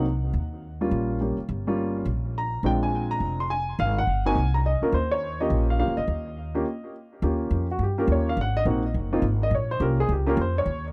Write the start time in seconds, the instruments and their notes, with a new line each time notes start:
Already playing: upright bass C2
0.33 upright bass D#2
0.81 grand piano G3 A#3 C#4 F4
0.91 upright bass A#1
1.20 grand piano G3 A#3 C#4 G4
1.38 muted upright bass stroke
1.49 upright bass G1
1.67 grand piano G3 A#3 C#4 F4
2.05 upright bass A#1
2.38 grand piano A#5
2.63 upright bass A#1, grand piano G#3 C4 D4 F4 G5
2.83 grand piano G#5
3.11 grand piano A#5
3.20 upright bass F1
3.40 grand piano C6
3.50 grand piano G#5
3.79 upright bass G#1, grand piano F5
3.98 grand piano F#5
4.07 upright bass G1
4.25 grand piano A#3 C4 D#4 F#4 G#5
4.35 upright bass C2
4.54 grand piano A#5
4.66 grand piano D#5
4.81 grand piano A#3 C#4 F4 A#4, muted upright bass stroke
4.92 upright bass D#2, grand piano C5
5.11 grand piano C#5
5.40 grand piano A#3 C#4 F4 G4 D#5
5.50 upright bass A#1
5.70 grand piano F5
5.79 grand piano A#3 C#4 F4 G4 F5
5.88 upright bass C#2
5.97 upright bass D2, grand piano D#5
6.08 upright bass D#2
6.55 grand piano A#3 C#4 F4 G4
7.22 upright bass D#2, grand piano A#3 C#4 F4 G4
7.51 upright bass F2
7.71 grand piano F#4
7.79 upright bass G2
7.83 grand piano G4
7.98 grand piano A#3 C#4 F4 G4 A#4
8.07 upright bass D#2
8.12 grand piano C#5
8.29 grand piano F5
8.37 upright bass G#1
8.41 grand piano F#5
8.57 grand piano D#5
8.65 upright bass A#1, grand piano A#3 C4 D#4 F#4
8.94 upright bass F#1
9.13 grand piano A#3 C4 D#4 F4
9.22 upright bass G#1
9.43 grand piano D#5
9.51 upright bass A#1, grand piano C#5
9.71 grand piano C5
9.80 upright bass C2, grand piano A#3 C#4 F4 G4 A#4
10.00 grand piano G#4
10.09 upright bass C#2, grand piano G4
10.26 grand piano A#3 C#4 F4 G4 A#4
10.37 upright bass F2
10.41 grand piano C5
10.58 grand piano C#5
10.66 upright bass D#2